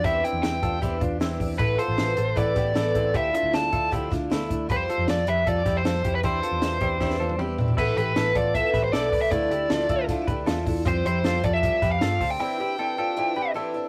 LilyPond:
<<
  \new Staff \with { instrumentName = "Lead electric guitar" } { \time 4/4 \key c \major \tempo 4 = 156 e''8 g''8 g''4 r2 | b'8 c''4. d''2 | e''8 e''8 a''4 r2 | c''4 d''8 e''8 d''8. c''4 b'16 |
c''2. r4 | b'8 b'4 d''8 e''8. c''16 d''8. e''16 | d''2 r2 | c''8 c''4 d''16 e''4 f''4 g''16 |
g''2. r4 | }
  \new Staff \with { instrumentName = "Clean electric guitar" } { \time 4/4 \key c \major <e' g'>8 <c' e'>4 <f' a'>8 <e' g'>8 <d' f'>8 <c' e'>4 | <e' b'>8 <f' a'>4 <a' c''>8 <e' b'>8 <e' g'>8 <e' a'>8 <c' e'>8 | <e' g'>8 <d' f'>4 <f' a'>8 <e' g'>8 <d' f'>8 <a e'>4 | <g' b'>8 <f' a'>4 <g' b'>8 <f' a'>8 <e' g'>8 <f' a'>8 <e' g'>8 |
<e' g'>8 <f' a'>4 <e' g'>8 <e' g'>8 <f' a'>8 <e' g'>4 | <b e'>8 <e' g'>8 <e' a'>8 <f' a'>4 <g' b'>8 <e' a'>8 <b' d''>8 | <a e'>8 <e' g'>8 <f' a'>8 <f' a'>4 <g' b'>8 <f' a'>4 | <c' f'>8 <e' g'>8 <f' a'>8 <f' a'>4 <g' b'>8 <f' a'>8 <a' c''>8 |
<c' e'>8 <e' g'>8 <e' a'>8 <f' a'>4 <g' b'>8 <e' a'>4 | }
  \new Staff \with { instrumentName = "Twelve-string acoustic guitar" } { \time 4/4 \key c \major <e c' d' g'>8 <c' d' g'>8 <e c' d' g'>8 <c' d' g'>8 <e c' d' g'>8 <c' d' g'>8 <e c' d' g'>8 <c' d' g'>8 | <a, e a b a'>8 <a b a'>8 <e a b a'>8 <a b a'>8 <a, e a b a'>8 <a b a'>8 <e a b a'>8 <a b a'>8 | <d f a d' e'>8 <a d' e'>8 <f a d' e'>8 <a d' e'>8 <d f a d' e'>8 <a d' e'>8 <f a d' e'>8 <a d' e'>8 | <f g c' g'>8 <g c' g'>8 <f g c' g'>8 <g c' g'>8 <f g c' g'>8 <g c' g'>8 <f g c' g'>8 <g c' g'>8 |
<e c' d' g'>8 <c' d' g'>8 <e c' d' g'>8 <c' d' g'>8 <e c' d' g'>8 <c' d' g'>8 <e c' d' g'>8 <c' d' g'>8 | <a, e a b a'>8 <a b a'>8 <e a b a'>8 <a b a'>8 <a, e a b a'>8 <a b a'>8 <e a b a'>8 <a b a'>8 | <d f a d' e'>8 <a d' e'>8 <f a d' e'>8 <a d' e'>8 <d f a d' e'>8 <a d' e'>8 <f a d' e'>8 <a d' e'>8 | <f g c' g'>8 <g c' g'>8 <f g c' g'>8 <g c' g'>8 <f g c' g'>8 <g c' g'>8 <f g c' g'>8 <g c' g'>8 |
<e c' d' g'>8 <c' d' g'>8 <e c' d' g'>8 <c' d' g'>8 <e c' d' g'>8 <c' d' g'>8 <e c' d' g'>8 <c' d' g'>8 | }
  \new Staff \with { instrumentName = "Picked electric bass" } { \clef bass \time 4/4 \key c \major e,8 r16 e,16 e,8 e,8 e,8 e,8 e,8 e,8 | a,,8 r16 a,,16 a,,8 a,,8 a,,8 a,,8 a,,8 a,,8 | d,8 r16 d,16 d,8 d,8 d,8 d,8 d,8 d,8 | f,8 r16 f,16 f,8 f,8 f,8 f,8 f,8 f,8 |
e,8 r16 e,16 e,8 e,8 e,8 e,8 e,8 e,8 | a,,8 a,,8 a,,8 a,,8. r16 a,,8 b,,8 c,8 | d,8 d,8 d,8 d,8. r16 d,8 e,8 e,8 | f,8 f,8 f,8 f,8. r16 f,8 g,8 d,8 |
r1 | }
  \new DrumStaff \with { instrumentName = "Drums" } \drummode { \time 4/4 <hh bd>8 hh8 <hh sn>8 <hh bd>8 <hh bd>8 <hh bd>8 <hh sn>8 <hho bd>8 | <hh bd>8 hh8 <hh sn>8 hh8 <hh bd>8 <hh bd sn>8 <hh sn>8 <hh bd>8 | <hh bd>8 hh8 <hh sn>8 <hh bd>8 <hh bd>8 <hh bd sn>8 <hh sn>8 <hh bd>8 | <hh bd>8 hh8 <hh sn>8 hh8 <hh bd>8 <hh bd sn>8 <hh sn>8 <hh bd>8 |
<hh bd>8 hh8 <hh sn>8 <hh bd>8 <bd sn>16 sn8 tommh16 toml8 tomfh16 tomfh16 | <cymc bd>8 hh8 <hh sn>8 <hh bd>8 <hh bd>8 <hh bd sn>8 <hh sn>8 <hho bd>8 | <hh bd>8 hh8 <hh sn>8 <hh bd>8 <hh bd>8 <hh bd>8 <hh sn>8 <hho bd>8 | <hh bd>8 hh8 <hh sn>8 <hh bd>8 <hh bd>8 <hh bd sn>8 <hh sn>8 <hho bd>8 |
r4 r4 r4 r4 | }
>>